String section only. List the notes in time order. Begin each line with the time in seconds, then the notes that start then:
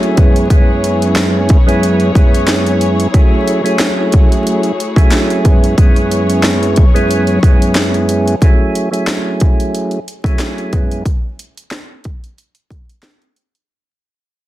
Already playing: A3 E4 F#4 G#4 C#5
0.17 F#3 B3 C#4
3.14 A3 F#4
5.45 F#3 B3 C#4 C#5